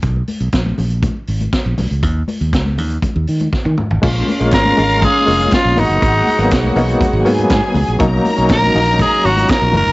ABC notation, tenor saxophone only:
X:1
M:4/4
L:1/8
Q:1/4=121
K:Abdor
V:1 name="Tenor saxophone"
z8 | z8 | z2 B2 A2 F E- | E3 z4 z |
z2 ^A2 _A ^F ^A A |]